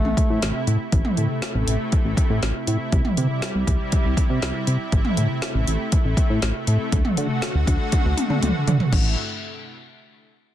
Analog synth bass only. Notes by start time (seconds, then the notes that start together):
0.05 A1
0.30 A2
0.42 A1
0.67 A2
0.93 A1
1.17 A2
1.55 A1
1.68 A1
2.05 A1
2.30 A2
2.42 A1
2.67 A2
2.93 C2
3.18 C3
3.55 C2
3.67 C2
4.05 C2
4.30 C3
4.42 C2
4.67 C3
4.92 A1
5.17 A2
5.55 A1
5.67 A1
6.05 A1
6.30 A2
6.42 A1
6.68 A2
6.93 D2
7.18 D3
7.55 D2
7.67 D2
8.05 D2
8.30 D3
8.43 D2
8.68 D3
8.93 A1